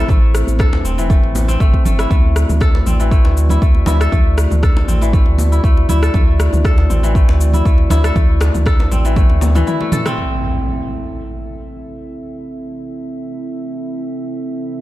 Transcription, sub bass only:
0.09 0.44 A1 loud
0.48 0.81 A1 medium
0.85 1.19 E1 medium
1.23 1.57 A1 medium
1.60 1.71 A1 medium
1.86 2.06 G1 medium
2.11 2.45 D2 loud
2.49 2.83 D2 medium
2.86 3.21 A1 loud
3.25 3.58 D2 medium
3.62 3.83 D2 medium
3.87 4.08 D2 loud
4.12 4.47 D2 loud
4.51 4.85 D2 medium
4.88 5.23 A1 loud
5.27 5.60 D2 medium
5.64 5.84 D2 medium
5.89 6.10 D2 loud
6.14 6.49 D2 loud
6.53 6.86 D2 medium
6.90 7.24 A1 loud
7.28 7.62 D2 medium
7.65 7.86 D2 medium
7.91 8.11 D2 loud
8.16 8.50 D2 loud
8.54 8.88 D2 medium
8.91 9.26 A1 loud
9.30 9.63 D2 medium

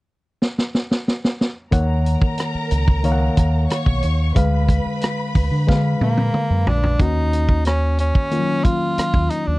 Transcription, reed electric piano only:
1.71 2.56 D#3 medium
1.71 2.56 A#3 medium
1.71 2.56 C#5 medium
1.71 2.57 F#5 medium
3.03 3.88 D#3 medium
3.03 3.88 A#3 medium
3.03 3.88 C#5 medium
3.03 3.11 F5 medium
3.12 3.92 F#5 medium
4.35 5.19 D3 medium
4.35 5.20 G#3 medium
4.35 5.20 B4 medium
4.35 5.20 F5 medium
5.67 6.52 D3 medium
5.67 6.52 G#3 medium
5.67 6.52 B4 medium
5.67 6.52 F5 medium
6.99 7.83 D#3 medium
6.99 7.84 A#3 medium
6.99 7.84 C#4 medium
6.99 7.84 F#4 medium
8.31 9.15 D#3 medium
8.31 9.16 A#3 medium
8.31 9.16 C#4 medium
8.31 8.39 F4 medium
8.39 9.19 F#3 medium

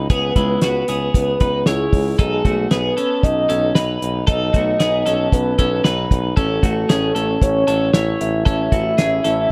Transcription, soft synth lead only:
0.10 1.10 B4 medium
1.15 1.68 B4 medium
1.66 2.18 G#4 medium
2.19 2.67 G#4 medium
2.71 3.25 B4 loud
3.23 4.02 D#5 loud
4.28 5.28 D#5 loud
5.33 6.07 B4 loud
6.37 7.44 A4 medium
7.42 7.94 C#5 loud
8.20 9.52 E5 loud

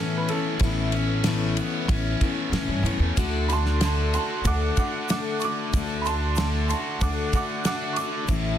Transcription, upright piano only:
0.00 0.14 A4 medium
0.17 0.30 B4 medium
0.29 2.17 A4 medium
3.48 3.52 B5 medium
3.52 3.81 A5 medium
3.52 3.82 C6 loud
3.84 4.13 A5 medium
3.84 4.13 C6 medium
4.15 4.44 A5 medium
4.15 4.45 C6 medium
4.47 4.75 F#5 medium
4.47 4.77 D6 medium
4.77 5.07 F#5 medium
4.77 5.09 D6 medium
5.11 5.40 F#5 medium
5.11 5.41 D6 medium
5.40 5.43 C#6 medium
5.44 5.74 D6 loud
6.02 6.05 B5 medium
6.02 6.36 C6 loud
6.06 6.35 A5 medium
6.37 6.67 A5 medium
6.37 6.67 C6 medium
6.68 6.98 A5 medium
6.68 7.00 C6 medium
7.02 7.31 F#5 medium
7.02 7.32 D6 medium
7.35 7.64 F#5 medium
7.35 7.65 D6 medium
7.66 7.95 F#5 medium
7.66 7.95 D6 medium
7.93 7.97 C#6 medium
7.93 8.27 D6 loud

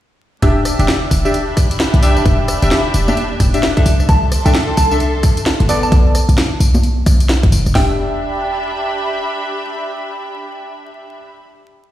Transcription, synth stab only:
0.42 0.74 D4 loud
0.42 0.74 G4 medium
0.42 0.74 E5 loud
0.79 0.88 D4 medium
0.79 0.88 G4 medium
0.79 0.88 E5 loud
1.25 1.34 D4 medium
1.25 1.34 G4 medium
1.25 1.34 E5 loud
2.03 2.59 D4 loud
2.03 2.59 G4 medium
2.03 2.59 E5 loud
2.62 2.80 D4 medium
2.62 2.80 G4 medium
2.62 2.80 E5 loud
3.08 3.17 D4 loud
3.08 3.17 G4 medium
3.08 3.17 E5 loud
3.54 3.74 D4 loud
3.54 3.74 G4 medium
3.54 3.74 E5 loud
3.77 3.94 D4 loud
3.77 3.94 A4 medium
3.77 3.94 E5 loud
4.46 4.55 D4 medium
4.46 4.55 A4 medium
4.46 4.55 E5 loud
4.91 5.00 D4 medium
4.91 5.00 A4 medium
4.91 5.00 E5 loud
5.69 6.15 B3 loud
5.69 6.15 A4 medium
5.69 6.15 D5 loud
7.75 11.18 D4 medium
7.75 11.18 G4 medium
7.75 11.18 E5 medium

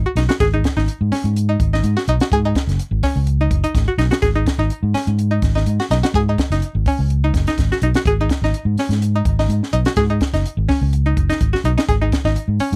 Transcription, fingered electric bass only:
0.15 0.27 B1 medium
0.40 0.61 G#1 loud
0.77 0.87 G#1 medium
1.01 1.11 G#2 medium
1.12 muted fingered electric bass stroke soft
1.24 1.55 G#2 medium
1.60 1.81 G#1 medium
1.83 1.95 G#2 medium
2.08 2.19 B1 medium
2.32 2.53 G#2 loud
2.67 2.78 F#1 medium
2.91 3.01 G#1 medium
3.16 3.47 C#2 medium
3.51 3.62 F#1 medium
3.75 3.86 G#1 loud
3.98 4.10 B1 medium
4.23 4.44 G#1 loud
4.58 4.69 G#1 medium
4.83 4.93 G#2 medium
4.94 muted fingered electric bass stroke soft
5.07 5.38 G#2 medium
5.42 5.63 G#1 medium
5.66 5.78 G#2 medium
5.91 6.02 B1 medium
6.14 6.35 G#2 loud
6.50 6.60 F#1 medium
6.75 6.85 G#1 loud
6.99 7.30 C#2 medium
7.34 7.45 F#1 medium
7.57 7.69 G#1 medium
7.82 7.93 B1 medium
8.05 8.27 G#1 loud
8.42 8.52 G#1 medium
8.65 8.75 G#2 medium
8.76 muted fingered electric bass stroke soft
8.89 9.21 G#2 medium
9.25 9.46 G#1 medium
9.48 9.60 G#2 medium
9.73 9.84 B1 medium
9.97 10.18 G#2 loud
10.33 10.43 F#1 medium
10.57 10.67 G#1 loud
10.81 11.13 C#2 medium
11.17 11.28 F#1 medium
11.41 11.52 G#1 medium
11.64 11.76 B1 medium
11.88 12.10 G#1 loud
12.24 12.35 G#1 medium
12.48 12.58 G#2 medium
12.60 muted fingered electric bass stroke soft
12.72 12.76 G#2 medium

